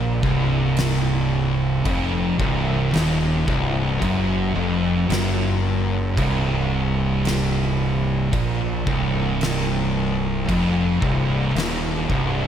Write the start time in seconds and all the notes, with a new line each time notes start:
Already playing: A#1 A#2
0.23 C1 C2, kick
0.77 snare, crash
1.85 F1 F2, kick, crash
2.39 C1 C2, kick
2.94 D#1 D#2, snare, crash
3.48 C1 C2, kick
4.01 F#1 F#2, kick, crash
4.55 F1 F2
5.10 F#1 F#2, snare, crash
6.17 C1 C2, kick, crash
7.25 snare, crash
8.33 A#1 A#2, kick, crash
8.87 C1 C2, kick
9.41 snare, crash
10.49 F1 F2, kick, crash
11.02 C1 C2, kick
11.55 D#1 D#2, snare, crash
12.10 C1 C2, kick